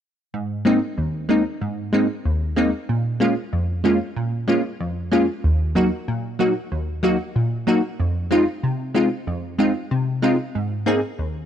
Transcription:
0.34 G#2
0.65 G#3 A#3 C4 D#4
0.98 D#2
1.29 G#3 A#3 C4 D#4
1.61 G#2
1.93 G#3 A#3 C4 D#4
2.25 D#2
2.56 G#3 A#3 C4 D#4
2.89 A#2
3.20 G#3 A#3 C#4 F4
3.53 F2
3.84 G#3 A#3 C#4 F4
4.17 A#2
4.48 G#3 A#3 C#4 F4
4.80 F2
5.12 G#3 A#3 C#4 F4
5.44 D#2
5.75 F#3 A#3 D#4 F#4
6.08 A#2
6.39 F#3 A#3 D#4 F#4
6.72 D#2
7.03 F#3 A#3 D#4 F#4
7.36 A#2
7.67 F#3 A#3 D#4 F#4
8.00 F2
8.31 G#3 C4 D#4 F4
8.63 C3
8.94 G#3 C4 D#4 F4
9.27 F2
9.59 G#3 C4 D#4 F4
9.91 C3
10.22 G#3 C4 D#4 F4
10.55 G#2
10.86 A#3 C4 D#4 G#4
11.19 D#2

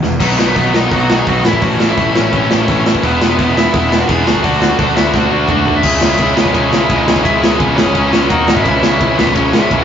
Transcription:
0.03 E2 B2 D#3, snare
0.20 B1 B2 D#3 F#3 B3 D#4 B4, kick, crash
0.38 B1 B2 D#3 F#3 B3 D#4, snare
0.47 B3 B4
0.55 B1 B2 D#3 F#3 B3 D#4, kick, open hi-hat
0.73 B2 D#3 F#3 B3 D#4 D#5, snare
0.90 B1 B2 D#3 F#3 B3 D#4 F#4 F#5, kick, open hi-hat
1.09 B2 D#3 F#3 B3 D#4, snare
1.18 G#4 G#5
1.27 B1 B2 D#3 F#3 B3 D#4 F#4 F#5, kick, open hi-hat
1.44 A1 A2 E3 A3 C#4 E4 E5, snare
1.53 kick
1.62 A1 A2 E3 A3 C#4 E4 F#4 F#5, kick, open hi-hat
1.79 A2 E3 A3 C#4 E4, snare
1.89 E4 E5
1.97 A1 A2 E3 A3 C#4 E4, kick, open hi-hat
2.14 A1 A2 E3 A3 C#4 E4 C#5, snare
2.32 A1 A2 E3 A3 C#4 E4, kick, open hi-hat
2.50 A1 A2 E3 A3 C#4 E4, snare
2.68 A1 A2 E3 A3 C#4 E4, kick, open hi-hat
2.86 A2 E3 A3 C#4 E4, snare
2.95 kick
3.03 E1 E3 G#3 B3 E4 B4, kick, open hi-hat
3.20 E1 E3 G#3 B3 E4, snare
3.30 B3 B4
3.38 E1 E3 G#3 B3 E4, kick, open hi-hat
3.56 E3 G#3 B3 E4 E5, snare
3.73 E1 E3 G#3 B3 E4, kick, open hi-hat
3.90 E3 G#3 B3 E4, snare
4.01 F#4 F#5
4.08 E1 E3 G#3 B3 E4 G#4 G#5, kick, open hi-hat
4.26 D2 D3 A3 D4 F#4, snare
4.35 kick
4.43 D2 D3 A3 D4 F#4 F#5, kick, open hi-hat
4.60 D3 A3 D4 F#4, snare
4.78 D2 D3 A3 D4 F#4, kick, open hi-hat
4.95 D2 D3 A3 D4 E4 F#4 E5, snare
5.13 D2 D3 A3 D4 F#4 F#5, kick, snare
5.30 D2 D3 A3 D4 F#4
5.48 D2 D3 A3 D4 F#4 F#5, kick, mid tom
5.65 D3 A3 D4 F#4, floor tom
5.76 E4 E5
5.83 C#2 C#3 G#3 C#4 E4 G#4, kick, crash
6.00 C#2 C#3 G#3 C#4 E4 G#4, snare
6.10 E4 E5
6.17 C#2 C#3 G#3 C#4 E4 G#4, kick, ride
6.35 C#2 C#3 G#3 B3 C#4 E4 G#4 B4, snare
6.46 kick
6.53 C#2 C#3 G#3 C#4 E4 G#4 C#5, kick, ride
6.71 C#2 C#3 G#3 C#4 E4 G#4, snare
6.80 E4 E5
6.89 C#2 C#3 G#3 C#4 E4 G#4, kick, ride
6.97 D#4 D#5
7.06 C#2 C#3 G#3 C#4 E4 G#4, snare
7.16 kick
7.23 C#2 C#3 G#3 C#4 E4 G#4 E5, kick, ride
7.41 C#3 G#3 C#4 E4 G#4, snare
7.51 B3 B4
7.58 C#2 C#3 G#3 C#4 E4 G#4, kick, ride
7.76 C#2 C#3 G#3 C#4 E4 G#4 C#5, snare
7.86 kick
7.94 C#2 C#3 G#3 C#4 E4 G#4, kick, ride
8.11 C#2 C#3 G#3 C#4 E4 G#4, snare
8.28 D#2 D#3 A#3 D#4 F#4 A#4 F#5, kick, ride
8.47 G#1 G#2 D#3 G#3 D#4, snare
8.56 E4 E5, kick
8.64 C#2 C#3 E3 G#3 C#4, kick, ride
8.82 C#2 C#3 E3 G#3 C#4, snare
8.91 E4 E5
8.99 C#2 C#3 E3 G#3 C#4, kick, ride
9.16 C#2 C#3 E3 G#3 B3 C#4 B4, snare
9.27 kick
9.34 C#2 C#3 E3 G#3 C#4 C#5, kick, ride
9.53 C#2 C#3 E3 G#3 C#4, snare
9.61 E4 E5
9.71 C#2 C#3 E3 G#3 C#4, kick, ride
9.79 F#5

